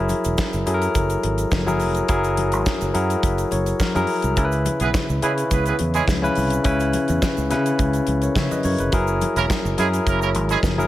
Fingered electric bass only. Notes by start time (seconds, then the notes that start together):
Already playing: F#1
0.26 E1
0.54 F#1
0.67 F#2
0.95 F#1
1.24 G#1
1.52 F#1
1.81 F1
2.09 F#1
2.53 G#1
2.82 F#1
2.95 F#2
3.23 F#1
3.52 F#1
3.96 F#2
4.24 C2
4.37 C#2
4.81 B1
5.09 C#2
5.23 C#3
5.51 C#2
5.80 E2
6.08 C#2
6.37 C2
6.65 C#2
7.09 E2
7.38 C#2
7.51 C#3
7.79 C#2
8.08 C#2
8.36 C#3
8.65 F#2
8.80 F1
8.93 F#1
9.36 E1
9.65 F#1
9.79 F#2
10.07 F#1
10.35 G#1
10.63 F#1